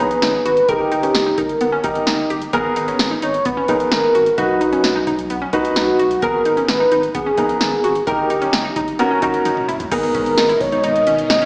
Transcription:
Already playing: soft synth lead B4
0.00 analog synth bass A#1, grand piano B3 G#4 A#5, synth arpeggio sound D#4
0.11 closed hi-hat
0.22 analog synth bass G#1, synth arpeggio sound D#4, snare, closed hi-hat
0.45 analog synth bass G#1, synth arpeggio sound F#4, soft synth lead B4, closed hi-hat
0.57 closed hi-hat
0.68 analog synth bass G1, grand piano D#4 G4 A#4, soft synth lead G4, synth arpeggio sound A#4, kick, closed hi-hat
0.92 analog synth bass G1, synth arpeggio sound D#4, closed hi-hat
1.03 synth arpeggio sound C#4, closed hi-hat
1.15 analog synth bass G1, snare, closed hi-hat
1.26 synth arpeggio sound D#4
1.38 analog synth bass G1, synth arpeggio sound D#4, soft synth lead A#4, kick, closed hi-hat
1.49 closed hi-hat
1.61 analog synth bass G1, synth arpeggio sound B3, closed hi-hat
1.72 synth arpeggio sound C#4
1.84 analog synth bass G#1, grand piano D#4 G4 A#4, synth arpeggio sound D#4, kick, closed hi-hat
1.95 closed hi-hat
2.07 analog synth bass G1, synth arpeggio sound D#4, snare, closed hi-hat
2.30 analog synth bass G1, synth arpeggio sound G4, closed hi-hat
2.42 closed hi-hat
2.53 analog synth bass G#1, grand piano B3 G#4 A#4, synth arpeggio sound A#4, kick, closed hi-hat
2.76 analog synth bass G#1, synth arpeggio sound D#4, closed hi-hat
2.88 synth arpeggio sound C#4, closed hi-hat
2.99 analog synth bass G#1, snare, closed hi-hat
3.11 synth arpeggio sound D#4
3.22 analog synth bass G#1, synth arpeggio sound D#4, soft synth lead C#5, closed hi-hat
3.34 closed hi-hat
3.45 analog synth bass G#1, synth arpeggio sound B3, soft synth lead B4, kick, closed hi-hat
3.57 synth arpeggio sound C#4
3.68 analog synth bass A#1, grand piano B3 G#4 A#4, synth arpeggio sound D#4, kick, closed hi-hat
3.80 closed hi-hat
3.92 analog synth bass G#1, synth arpeggio sound D#4, soft synth lead A#4, snare, closed hi-hat
4.15 analog synth bass G#1, synth arpeggio sound F#4, closed hi-hat
4.26 closed hi-hat
4.38 analog synth bass B1, grand piano D#4 F#4 B4, soft synth lead F#4, synth arpeggio sound F#4, kick, closed hi-hat
4.61 analog synth bass B1, synth arpeggio sound D#4, closed hi-hat
4.73 synth arpeggio sound C#4, closed hi-hat
4.84 analog synth bass B1, snare, closed hi-hat
4.96 synth arpeggio sound D#4
5.07 analog synth bass B1, synth arpeggio sound D#4, kick, closed hi-hat
5.19 closed hi-hat
5.30 analog synth bass B1, synth arpeggio sound B3, closed hi-hat
5.42 synth arpeggio sound C#4
5.53 analog synth bass C#2, grand piano D#4 F#4 B4, synth arpeggio sound D#4, kick, closed hi-hat
5.65 closed hi-hat
5.76 analog synth bass B1, synth arpeggio sound D#4, soft synth lead F#4, snare, closed hi-hat
5.99 analog synth bass B1, synth arpeggio sound F#4, closed hi-hat
6.11 closed hi-hat
6.22 analog synth bass G#1, grand piano B3 G#4 A#4, soft synth lead A#4, synth arpeggio sound A#4, kick, closed hi-hat
6.45 analog synth bass G#1, synth arpeggio sound D#4, closed hi-hat
6.57 synth arpeggio sound C#4, closed hi-hat
6.68 analog synth bass G#1, soft synth lead B4, snare, closed hi-hat
6.80 synth arpeggio sound D#4
6.92 analog synth bass G#1, synth arpeggio sound D#4, closed hi-hat
7.03 closed hi-hat
7.15 analog synth bass G#1, synth arpeggio sound B3, soft synth lead G#4, kick, closed hi-hat
7.26 synth arpeggio sound C#4
7.37 analog synth bass A#1, grand piano B3 G#4 A#4, synth arpeggio sound D#4, kick, closed hi-hat
7.49 closed hi-hat
7.61 analog synth bass G#1, synth arpeggio sound D#4, soft synth lead G#4, snare, closed hi-hat
7.84 analog synth bass G#1, synth arpeggio sound F#4, closed hi-hat
7.95 closed hi-hat
8.07 analog synth bass G1, grand piano D#4 G4 A#4, soft synth lead G4, synth arpeggio sound A#4, kick, closed hi-hat
8.30 analog synth bass G1, synth arpeggio sound D#4, closed hi-hat
8.42 synth arpeggio sound C#4, closed hi-hat
8.53 analog synth bass G1, snare, closed hi-hat
8.65 synth arpeggio sound D#4
8.76 analog synth bass G1, synth arpeggio sound D#4, kick, closed hi-hat
8.88 closed hi-hat
8.99 analog synth bass F#1, synth arpeggio sound B3, grand piano C#4 F#4 A#4, closed hi-hat
9.11 synth arpeggio sound C#4
9.22 analog synth bass G#1, grand piano C#4 F#4 A#4, synth arpeggio sound D#4, kick, closed hi-hat
9.34 closed hi-hat
9.45 analog synth bass F#1, synth arpeggio sound D#4, closed hi-hat, high tom
9.57 mid tom
9.68 analog synth bass F#1, synth arpeggio sound E4, closed hi-hat, mid tom
9.80 closed hi-hat, floor tom
9.91 analog synth bass G#1, string machine B2 G#3 D#4 A#4, grand piano B3 G#4 A#4, synth arpeggio sound D#4, soft synth lead A#4, kick, closed hi-hat, crash
10.03 closed hi-hat
10.15 synth arpeggio sound C#4, kick, closed hi-hat
10.26 analog synth bass G#1, closed hi-hat
10.38 analog synth bass G#1, synth arpeggio sound D#4, snare, closed hi-hat
10.49 synth arpeggio sound E4, closed hi-hat
10.61 analog synth bass G#1, soft synth lead C#5, kick, open hi-hat
10.72 synth arpeggio sound D#4, closed hi-hat
10.84 analog synth bass G#1, synth arpeggio sound D#4, soft synth lead D#5, closed hi-hat
10.96 closed hi-hat
11.07 analog synth bass G#1, synth arpeggio sound C#4, closed hi-hat
11.19 closed hi-hat
11.30 analog synth bass G#1, synth arpeggio sound D#4, soft synth lead D#5, snare, closed hi-hat
11.42 synth arpeggio sound C#4, closed hi-hat

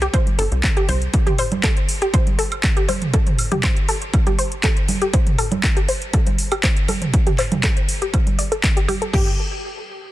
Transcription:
0.02 synth arpeggio sound G4, closed hi-hat
0.14 synth arpeggio sound C5, kick, closed hi-hat, high woodblock
0.27 closed hi-hat, high conga
0.39 analog synth bass G1, synth arpeggio sound A4, open hi-hat
0.52 analog synth bass C2, closed hi-hat
0.64 kick, clap, closed hi-hat
0.77 synth arpeggio sound G4, closed hi-hat
0.89 analog synth bass C2, synth arpeggio sound C5, open hi-hat, high conga
1.02 closed hi-hat
1.14 kick, closed hi-hat
1.27 synth arpeggio sound G4, closed hi-hat, mid tom
1.38 synth arpeggio sound C5, open hi-hat, high woodblock
1.52 closed hi-hat, high conga
1.64 synth arpeggio sound A4, kick, clap, closed hi-hat
1.77 closed hi-hat
1.89 open hi-hat
2.02 synth arpeggio sound G4, closed hi-hat
2.14 synth arpeggio sound C5, kick, closed hi-hat
2.27 closed hi-hat, high conga
2.39 synth arpeggio sound A4, open hi-hat
2.52 closed hi-hat, high woodblock
2.64 kick, clap, closed hi-hat
2.77 synth arpeggio sound G4, closed hi-hat
2.89 synth arpeggio sound C5, open hi-hat, high conga, high woodblock
3.02 closed hi-hat, mid tom
3.14 synth arpeggio sound A4, kick, closed hi-hat
3.27 closed hi-hat, mid tom
3.39 open hi-hat, high woodblock
3.52 synth arpeggio sound G4, closed hi-hat, mid tom, high conga
3.63 synth arpeggio sound C5, kick, clap, closed hi-hat
3.77 closed hi-hat
3.89 synth arpeggio sound A4, open hi-hat
4.02 closed hi-hat
4.14 kick, closed hi-hat, high woodblock
4.27 synth arpeggio sound G4, closed hi-hat, high conga
4.39 synth arpeggio sound C5, open hi-hat
4.52 closed hi-hat
4.64 synth arpeggio sound A4, kick, clap, closed hi-hat
4.77 closed hi-hat
4.88 open hi-hat, high conga
5.02 synth arpeggio sound G4, closed hi-hat
5.13 synth arpeggio sound C5, kick, closed hi-hat
5.27 closed hi-hat, mid tom
5.38 synth arpeggio sound A4, open hi-hat, high woodblock
5.52 closed hi-hat, high conga
5.64 kick, clap, closed hi-hat
5.77 synth arpeggio sound G4, closed hi-hat
5.89 synth arpeggio sound C5, open hi-hat
6.02 closed hi-hat
6.13 synth arpeggio sound A4, kick, closed hi-hat
6.27 closed hi-hat, high conga
6.38 open hi-hat
6.52 synth arpeggio sound G4, closed hi-hat, high woodblock
6.64 synth arpeggio sound C5, kick, clap, closed hi-hat
6.77 closed hi-hat
6.88 synth arpeggio sound A4, open hi-hat, high conga, high woodblock
7.02 closed hi-hat, mid tom
7.14 kick, closed hi-hat
7.27 synth arpeggio sound G4, closed hi-hat, mid tom
7.39 synth arpeggio sound C5, clap, open hi-hat, high woodblock
7.52 closed hi-hat, mid tom, high conga
7.64 synth arpeggio sound A4, kick, clap, closed hi-hat
7.77 closed hi-hat
7.89 open hi-hat
8.02 synth arpeggio sound G4, closed hi-hat
8.14 synth arpeggio sound C5, kick, closed hi-hat, high woodblock
8.27 closed hi-hat, high conga
8.39 synth arpeggio sound D5, open hi-hat
8.52 synth arpeggio sound A4, closed hi-hat
8.64 kick, clap, closed hi-hat
8.77 synth arpeggio sound G4, closed hi-hat
8.88 synth arpeggio sound G4, open hi-hat, high conga, high woodblock
9.02 synth arpeggio sound A4, closed hi-hat
9.13 analog synth bass G1, synth arpeggio sound G4, kick, crash

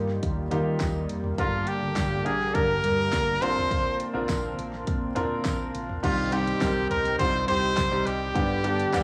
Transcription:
Already playing: fingered electric bass G2, grand piano A#2 A#3 D#4 F4 G4, analog synth pad D#3 G3 A#3 F4
0.08 snare
0.23 fingered electric bass D#2, kick, closed hi-hat
0.51 fingered electric bass D#3, grand piano A#3 D#4 F4 G4, closed hi-hat, floor tom
0.80 fingered electric bass D#2, kick, snare, clap, closed hi-hat, tambourine
1.10 fingered electric bass F1, closed hi-hat
1.24 floor tom
1.38 fingered electric bass G1, grand piano G2 D3 A#3 D4 G4 A#4, analog synth pad D3 G4, trumpet F4, kick, closed hi-hat
1.67 trumpet G4, closed hi-hat
1.82 fingered electric bass G1
1.96 fingered electric bass G1, kick, snare, clap, closed hi-hat, tambourine
2.25 fingered electric bass A#1, grand piano A#3 D4 G4 A#4, trumpet G#4, closed hi-hat
2.40 snare
2.54 fingered electric bass G1, grand piano A#3 D4 G4 A#4, trumpet A#4, kick, closed hi-hat
2.84 fingered electric bass G2, closed hi-hat, floor tom
3.12 fingered electric bass G1, kick, snare, clap, closed hi-hat, tambourine
3.41 fingered electric bass A#1, grand piano A#2 F3 C4 D4 F4 A#4, analog synth pad C4 F4, trumpet C5, closed hi-hat
3.57 floor tom
3.71 kick, closed hi-hat
4.00 closed hi-hat
4.13 fingered electric bass A#1, grand piano C4 D4 F4 A#4
4.29 fingered electric bass A#1, kick, snare, clap, closed hi-hat, tambourine
4.58 fingered electric bass A#1, closed hi-hat
4.73 snare
4.87 fingered electric bass A#1, kick, closed hi-hat
5.15 fingered electric bass A#2, grand piano C4 D4 F4 A#4, closed hi-hat, floor tom
5.45 fingered electric bass A#1, kick, snare, clap, closed hi-hat, tambourine
5.75 fingered electric bass A#1, closed hi-hat
5.89 floor tom
6.03 fingered electric bass C2, grand piano G2 G3 C4 D#4 G4, french horn section D#3 D#4, analog synth pad D#4 G4 C5 G5, trumpet F4, kick, closed hi-hat, crash
6.32 grand piano G3 C4 D#4 G4, trumpet G4, closed hi-hat
6.47 closed hi-hat
6.60 fingered electric bass C2, grand piano G3 C4 D#4 A#4, kick, snare, clap, closed hi-hat, tambourine
6.90 fingered electric bass C2, trumpet A#4, closed hi-hat, floor tom
7.05 snare, closed hi-hat
7.18 fingered electric bass C2, french horn section C3 C4, grand piano G3 C4 D#4 F4, trumpet C5, kick, closed hi-hat
7.48 fingered electric bass C2, grand piano G3 C4 D#4 G4, trumpet C5, closed hi-hat, floor tom
7.77 fingered electric bass C2, kick, snare, clap, closed hi-hat, tambourine
7.92 grand piano G3 C4 D#4 G4
8.06 fingered electric bass C2, trumpet G4, closed hi-hat
8.34 fingered electric bass G1, grand piano G2 D3 G3 B3 D4 G4, french horn section D3 D4, analog synth pad B4 D5 B5, kick, closed hi-hat
8.64 grand piano G3 B3 D4 G4, closed hi-hat
8.79 closed hi-hat
8.93 fingered electric bass G1, grand piano G3 B3 D4 G4, kick, snare, clap, closed hi-hat, tambourine

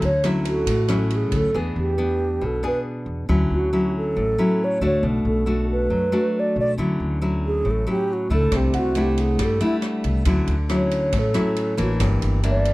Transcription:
Already playing: nylon-string guitar D3
0.01 upright bass D2, alto flute C#5, ride
0.24 nylon-string guitar F#3 C#4 E4, cross-stick, ride
0.45 alto flute F#4, tine electric piano A4, ride
0.67 upright bass A1, nylon-string guitar A2, kick, ride
0.88 nylon-string guitar F#3 C#4 E4, cross-stick, ride
1.10 ride
1.16 alto flute G#4
1.32 upright bass D2, kick, ride
1.37 alto flute A4
1.54 upright bass E2, nylon-string guitar E3 B3 D4 G#4, tine electric piano B4
1.76 upright bass E2, alto flute G4
1.98 nylon-string guitar B3 D4
2.41 upright bass B1, nylon-string guitar B2
2.46 alto flute A4
2.63 nylon-string guitar B3 D4 G#4, alto flute B4
3.06 upright bass E2
3.29 upright bass D2, nylon-string guitar D3 F#3 C#4 E4
3.50 upright bass D2, alto flute F#4
3.73 nylon-string guitar F#3 C#4 E4
3.98 alto flute A4
4.16 upright bass A1, nylon-string guitar A2
4.38 nylon-string guitar F#3 C#4 E4
4.64 alto flute C#5
4.81 upright bass D2, nylon-string guitar A3 D4 F#4
4.85 alto flute C#5
5.03 upright bass B1, nylon-string guitar B2
5.25 upright bass B1, alto flute A4
5.46 nylon-string guitar A3 D4 F#4
5.72 alto flute B4
5.90 upright bass F#2, nylon-string guitar F#3
6.12 nylon-string guitar A3 D4 F#4
6.40 alto flute D5
6.56 upright bass B1
6.60 alto flute D5
6.77 upright bass D2, nylon-string guitar D3 F#3 C#4 E4
7.00 upright bass D2
7.21 nylon-string guitar F#3 C#4 E4
7.47 alto flute G#4
7.65 upright bass A1, nylon-string guitar A2
7.71 alto flute A4
7.87 nylon-string guitar F#3 C#4 E4, alto flute G4
8.13 alto flute F#4
8.30 upright bass C#2, nylon-string guitar A3 D4 E4, alto flute A4
8.52 upright bass C2, nylon-string guitar C3, kick, cross-stick, ride
8.57 alto flute G4
8.73 upright bass C2, tine electric piano F#5, ride
8.78 alto flute F#4
8.95 nylon-string guitar A3 D4 E4, ride
9.01 alto flute G4
9.17 alto flute G#4, ride
9.39 upright bass G2, nylon-string guitar G3, kick, cross-stick, ride
9.45 alto flute A4
9.60 nylon-string guitar A3 D4 E4, alto flute E4, ride
9.82 cross-stick, ride
10.04 upright bass C2, ride
10.25 upright bass D2, nylon-string guitar D3 F#3 C#4 E4, kick, ride
10.47 upright bass D2, ride
10.69 nylon-string guitar F#3 C#4 E4, cross-stick, ride
10.75 alto flute C#5
10.91 ride
11.13 upright bass A1, nylon-string guitar A2, tine electric piano C#5, kick, ride
11.19 alto flute A4
11.34 nylon-string guitar F#3 C#4 E4, cross-stick, ride
11.56 ride
11.77 upright bass A1, nylon-string guitar E3 A#3 D4, ride
11.82 alto flute F#4
12.00 upright bass G1, nylon-string guitar G2, kick, cross-stick, ride
12.22 upright bass G1, ride
12.43 nylon-string guitar E3 A#3 D4, tine electric piano E5, ride
12.50 alto flute D5
12.65 ride

